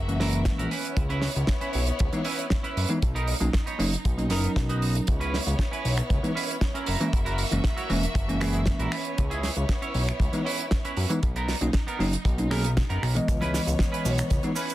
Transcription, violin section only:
0, 0, Header, 1, 2, 480
1, 0, Start_track
1, 0, Tempo, 512821
1, 913, Time_signature, 4, 2, 24, 8
1, 13802, End_track
2, 0, Start_track
2, 0, Title_t, "Violin section"
2, 0, Program_c, 0, 48
2, 0, Note_on_c, 0, 58, 74
2, 0, Note_on_c, 0, 66, 70
2, 0, Note_on_c, 0, 76, 82
2, 651, Note_off_c, 0, 58, 0
2, 651, Note_off_c, 0, 76, 0
2, 653, Note_off_c, 0, 66, 0
2, 674, Note_on_c, 0, 64, 70
2, 675, Note_on_c, 0, 73, 84
2, 679, Note_on_c, 0, 59, 77
2, 2812, Note_off_c, 0, 64, 0
2, 2812, Note_off_c, 0, 73, 0
2, 2814, Note_off_c, 0, 59, 0
2, 2834, Note_on_c, 0, 63, 71
2, 4734, Note_off_c, 0, 63, 0
2, 4763, Note_on_c, 0, 73, 83
2, 4764, Note_on_c, 0, 59, 77
2, 4765, Note_on_c, 0, 64, 67
2, 6421, Note_off_c, 0, 59, 0
2, 6421, Note_off_c, 0, 73, 0
2, 6422, Note_off_c, 0, 64, 0
2, 6436, Note_on_c, 0, 76, 85
2, 6438, Note_on_c, 0, 58, 76
2, 6438, Note_on_c, 0, 66, 70
2, 8335, Note_off_c, 0, 76, 0
2, 8336, Note_off_c, 0, 58, 0
2, 8336, Note_off_c, 0, 66, 0
2, 8349, Note_on_c, 0, 59, 78
2, 8351, Note_on_c, 0, 64, 70
2, 8351, Note_on_c, 0, 73, 82
2, 10489, Note_off_c, 0, 59, 0
2, 10490, Note_off_c, 0, 64, 0
2, 10490, Note_off_c, 0, 73, 0
2, 10513, Note_on_c, 0, 63, 69
2, 12414, Note_off_c, 0, 63, 0
2, 12432, Note_on_c, 0, 73, 83
2, 12433, Note_on_c, 0, 59, 74
2, 13802, Note_off_c, 0, 59, 0
2, 13802, Note_off_c, 0, 73, 0
2, 13802, End_track
0, 0, End_of_file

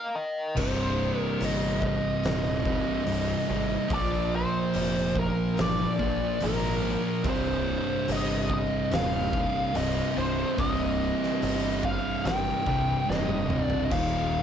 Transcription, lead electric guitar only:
0, 0, Header, 1, 2, 480
1, 0, Start_track
1, 0, Key_signature, -3, "minor"
1, 0, Tempo, 834492
1, 327, Time_signature, 4, 2, 24, 8
1, 8298, End_track
2, 0, Start_track
2, 0, Title_t, "Lead electric guitar"
2, 0, Program_c, 0, 29
2, 0, Note_on_c, 0, 70, 86
2, 0, Note_on_c, 0, 77, 100
2, 79, Note_off_c, 0, 77, 0
2, 90, Note_on_c, 0, 75, 93
2, 321, Note_off_c, 0, 75, 0
2, 342, Note_on_c, 0, 72, 88
2, 346, Note_off_c, 0, 70, 0
2, 693, Note_off_c, 0, 72, 0
2, 693, Note_on_c, 0, 70, 88
2, 828, Note_off_c, 0, 70, 0
2, 835, Note_on_c, 0, 75, 104
2, 1067, Note_off_c, 0, 75, 0
2, 1075, Note_on_c, 0, 75, 90
2, 2265, Note_off_c, 0, 75, 0
2, 2267, Note_on_c, 0, 74, 89
2, 2502, Note_off_c, 0, 74, 0
2, 2507, Note_on_c, 0, 72, 94
2, 2980, Note_on_c, 0, 70, 89
2, 2989, Note_off_c, 0, 72, 0
2, 3219, Note_off_c, 0, 70, 0
2, 3229, Note_on_c, 0, 74, 95
2, 3703, Note_on_c, 0, 70, 90
2, 3710, Note_off_c, 0, 74, 0
2, 4187, Note_off_c, 0, 70, 0
2, 4192, Note_on_c, 0, 72, 100
2, 4668, Note_off_c, 0, 72, 0
2, 4670, Note_on_c, 0, 75, 99
2, 4904, Note_off_c, 0, 75, 0
2, 4910, Note_on_c, 0, 75, 97
2, 5140, Note_on_c, 0, 77, 117
2, 5144, Note_off_c, 0, 75, 0
2, 5615, Note_on_c, 0, 75, 105
2, 5626, Note_off_c, 0, 77, 0
2, 5851, Note_off_c, 0, 75, 0
2, 5853, Note_on_c, 0, 72, 88
2, 6095, Note_off_c, 0, 72, 0
2, 6097, Note_on_c, 0, 75, 93
2, 6814, Note_on_c, 0, 77, 106
2, 6832, Note_off_c, 0, 75, 0
2, 7052, Note_off_c, 0, 77, 0
2, 7054, Note_on_c, 0, 79, 112
2, 7534, Note_on_c, 0, 75, 102
2, 7543, Note_off_c, 0, 79, 0
2, 7839, Note_off_c, 0, 75, 0
2, 7839, Note_on_c, 0, 74, 102
2, 7958, Note_off_c, 0, 74, 0
2, 7965, Note_on_c, 0, 75, 85
2, 8004, Note_on_c, 0, 77, 104
2, 8005, Note_off_c, 0, 75, 0
2, 8298, Note_off_c, 0, 77, 0
2, 8298, End_track
0, 0, End_of_file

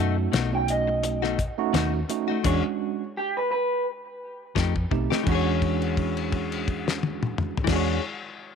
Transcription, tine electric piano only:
0, 0, Header, 1, 2, 480
1, 0, Start_track
1, 0, Tempo, 705882
1, 1663, Time_signature, 4, 2, 24, 8
1, 5814, End_track
2, 0, Start_track
2, 0, Title_t, "Tine electric piano"
2, 0, Program_c, 0, 4
2, 0, Note_on_c, 0, 57, 80
2, 0, Note_on_c, 0, 61, 78
2, 0, Note_on_c, 0, 63, 75
2, 0, Note_on_c, 0, 66, 90
2, 205, Note_off_c, 0, 57, 0
2, 205, Note_off_c, 0, 61, 0
2, 206, Note_off_c, 0, 63, 0
2, 207, Note_off_c, 0, 66, 0
2, 357, Note_on_c, 0, 61, 65
2, 358, Note_on_c, 0, 57, 65
2, 360, Note_on_c, 0, 63, 61
2, 364, Note_on_c, 0, 66, 76
2, 898, Note_off_c, 0, 61, 0
2, 899, Note_off_c, 0, 57, 0
2, 899, Note_off_c, 0, 63, 0
2, 902, Note_off_c, 0, 66, 0
2, 1075, Note_on_c, 0, 57, 86
2, 1076, Note_on_c, 0, 61, 79
2, 1079, Note_on_c, 0, 63, 87
2, 1081, Note_on_c, 0, 66, 106
2, 1347, Note_off_c, 0, 57, 0
2, 1347, Note_off_c, 0, 61, 0
2, 1348, Note_off_c, 0, 63, 0
2, 1349, Note_off_c, 0, 66, 0
2, 1424, Note_on_c, 0, 57, 79
2, 1426, Note_on_c, 0, 61, 78
2, 1428, Note_on_c, 0, 63, 72
2, 1430, Note_on_c, 0, 66, 88
2, 1613, Note_off_c, 0, 57, 0
2, 1614, Note_off_c, 0, 61, 0
2, 1615, Note_off_c, 0, 63, 0
2, 1616, Note_off_c, 0, 66, 0
2, 1666, Note_on_c, 0, 56, 82
2, 1667, Note_on_c, 0, 61, 77
2, 1669, Note_on_c, 0, 62, 72
2, 1671, Note_on_c, 0, 66, 87
2, 2059, Note_off_c, 0, 56, 0
2, 2060, Note_off_c, 0, 61, 0
2, 2061, Note_off_c, 0, 62, 0
2, 2062, Note_off_c, 0, 66, 0
2, 3339, Note_on_c, 0, 57, 67
2, 3341, Note_on_c, 0, 60, 61
2, 3342, Note_on_c, 0, 63, 64
2, 3345, Note_on_c, 0, 67, 70
2, 3530, Note_off_c, 0, 57, 0
2, 3531, Note_off_c, 0, 60, 0
2, 3532, Note_off_c, 0, 63, 0
2, 3533, Note_off_c, 0, 67, 0
2, 3570, Note_on_c, 0, 56, 80
2, 3579, Note_on_c, 0, 61, 80
2, 3589, Note_on_c, 0, 62, 77
2, 3597, Note_on_c, 0, 66, 89
2, 5135, Note_off_c, 0, 56, 0
2, 5139, Note_off_c, 0, 61, 0
2, 5144, Note_off_c, 0, 62, 0
2, 5148, Note_off_c, 0, 66, 0
2, 5207, Note_on_c, 0, 56, 81
2, 5215, Note_on_c, 0, 61, 79
2, 5226, Note_on_c, 0, 62, 74
2, 5235, Note_on_c, 0, 66, 87
2, 5416, Note_off_c, 0, 56, 0
2, 5420, Note_off_c, 0, 61, 0
2, 5426, Note_off_c, 0, 62, 0
2, 5431, Note_off_c, 0, 66, 0
2, 5814, End_track
0, 0, End_of_file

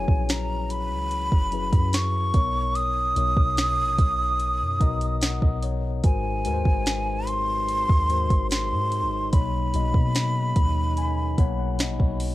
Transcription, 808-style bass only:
0, 0, Header, 1, 2, 480
1, 0, Start_track
1, 0, Key_signature, 5, "major"
1, 0, Tempo, 821918
1, 1607, Time_signature, 4, 2, 24, 8
1, 7211, End_track
2, 0, Start_track
2, 0, Title_t, "808-style bass"
2, 0, Program_c, 0, 38
2, 48, Note_on_c, 0, 34, 105
2, 529, Note_on_c, 0, 37, 102
2, 538, Note_off_c, 0, 34, 0
2, 756, Note_off_c, 0, 37, 0
2, 771, Note_on_c, 0, 30, 96
2, 1000, Note_off_c, 0, 30, 0
2, 1009, Note_on_c, 0, 42, 102
2, 1354, Note_off_c, 0, 42, 0
2, 1369, Note_on_c, 0, 35, 104
2, 1829, Note_off_c, 0, 35, 0
2, 1848, Note_on_c, 0, 35, 113
2, 1963, Note_off_c, 0, 35, 0
2, 1967, Note_on_c, 0, 35, 114
2, 2212, Note_on_c, 0, 34, 101
2, 2221, Note_off_c, 0, 35, 0
2, 2324, Note_off_c, 0, 34, 0
2, 2328, Note_on_c, 0, 35, 109
2, 2692, Note_on_c, 0, 42, 99
2, 2701, Note_off_c, 0, 35, 0
2, 2804, Note_off_c, 0, 42, 0
2, 2808, Note_on_c, 0, 35, 103
2, 3153, Note_off_c, 0, 35, 0
2, 3168, Note_on_c, 0, 35, 97
2, 3513, Note_off_c, 0, 35, 0
2, 3529, Note_on_c, 0, 32, 105
2, 3771, Note_on_c, 0, 39, 102
2, 3780, Note_off_c, 0, 32, 0
2, 3883, Note_off_c, 0, 39, 0
2, 3887, Note_on_c, 0, 32, 103
2, 4584, Note_off_c, 0, 32, 0
2, 4610, Note_on_c, 0, 39, 97
2, 4839, Note_off_c, 0, 39, 0
2, 4849, Note_on_c, 0, 32, 113
2, 5088, Note_on_c, 0, 44, 100
2, 5097, Note_off_c, 0, 32, 0
2, 5268, Note_on_c, 0, 32, 98
2, 5277, Note_off_c, 0, 44, 0
2, 5439, Note_off_c, 0, 32, 0
2, 5450, Note_on_c, 0, 35, 111
2, 5679, Note_off_c, 0, 35, 0
2, 5691, Note_on_c, 0, 35, 110
2, 5804, Note_off_c, 0, 35, 0
2, 5808, Note_on_c, 0, 47, 102
2, 6153, Note_off_c, 0, 47, 0
2, 6169, Note_on_c, 0, 39, 105
2, 6629, Note_off_c, 0, 39, 0
2, 6649, Note_on_c, 0, 35, 106
2, 6890, Note_on_c, 0, 34, 93
2, 6899, Note_off_c, 0, 35, 0
2, 7003, Note_off_c, 0, 34, 0
2, 7007, Note_on_c, 0, 35, 98
2, 7211, Note_off_c, 0, 35, 0
2, 7211, End_track
0, 0, End_of_file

